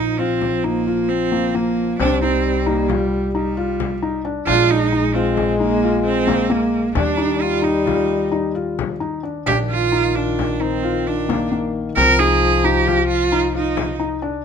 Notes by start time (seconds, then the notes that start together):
Already playing: A#1 F3 D#4
0.19 C4 F4, frame drum
0.41 frame drum
0.64 A#3 D#4
0.87 F4
1.09 C4
1.32 A#3
1.54 A#3
1.99 C2 G3 C4 D4, frame drum
2.21 C4 D#4
2.66 A#3 D#4, frame drum
2.89 G3 F4, frame drum
3.35 G3 D#4
3.57 F4
3.80 frame drum
4.02 D#4
4.25 D4
4.46 A#1 G#3 D4 F4, frame drum
4.71 D#4
4.92 D#4
5.14 C4 F4, frame drum
5.37 frame drum
5.60 A#3 D#4
5.83 F4
6.05 C4
6.27 A#3, frame drum
6.50 A#3
6.89 G#3
6.95 D#2 G3 D4, frame drum
7.17 D#4
7.41 F4
7.62 D#4
7.86 F4, frame drum
8.32 D#4
8.55 F4
8.79 frame drum
9.00 D#4
9.23 D4
9.46 A#1 D#3 D4 G4, frame drum
9.70 F4
9.92 D#4
10.15 D4 F4, frame drum
10.39 frame drum
10.61 C4 D#4
10.83 F4
11.07 D4
11.29 A#3, frame drum
11.51 A#3
11.96 C2 F3 C4 A#4, frame drum
12.19 D#4 G#4
12.64 D#4 G4
12.87 F4, frame drum
13.08 F4
13.32 D#4
13.54 D#4 F4
13.77 frame drum
14.00 D#4
14.22 D4